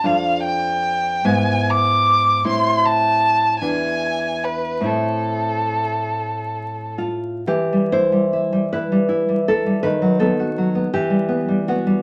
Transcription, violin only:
X:1
M:6/8
L:1/8
Q:3/8=51
K:Am
V:1 name="Violin"
f g2 ^g d'2 | c' a2 ^g2 B | A4- A z | [K:Em] z6 |
z6 |]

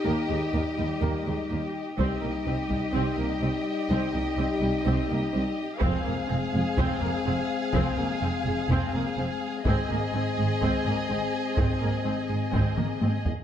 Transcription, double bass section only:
X:1
M:4/4
L:1/8
Q:1/4=125
K:Fdor
V:1 name="Double bass section" clef=bass
E,, E,, E,, E,, E,, E,, E,, z | C,, C,, C,, C,, C,, C,, C,, z | C,, C,, C,, C,, C,, C,, C,, z | F,,, F,,, F,,, F,,, F,,, F,,, F,,, z |
F,,, F,,, F,,, F,,, F,,, F,,, F,,, z | A,,, A,,, A,,, A,,, A,,, A,,, A,,, z | A,,, A,,, A,,, A,,, A,,, A,,, A,,, z |]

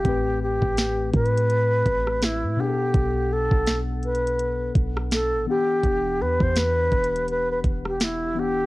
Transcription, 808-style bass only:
X:1
M:4/4
L:1/16
Q:"Swing 16ths" 1/4=83
K:Em
V:1 name="808-style bass" clef=bass
A,,,3 A,,,3 A,,4 A,,,3 A,, z2 | B,,,3 B,,,6- B,,, B,,,3 A,,, z2 | E,,,2 E,, E,,3 E,,,4 E,,,6 |]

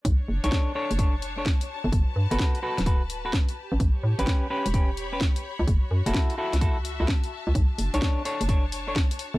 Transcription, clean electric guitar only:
X:1
M:4/4
L:1/16
Q:"Swing 16ths" 1/4=128
K:Bm
V:1 name="Clean electric guitar"
z3 [DAc]3 [DAc] z [DAc] z2 [DAc] z4 | z3 [FAB]3 [FAB] z [FAB] z2 [FAB] z4 | z3 [CGB]3 [CGB] z [CGB] z2 [CGB] z4 | z3 [EFA]3 [EFA] z [EFA] z2 [EFA] z4 |
z3 [DAc]3 [DAc] z [DAc] z2 [DAc] z4 |]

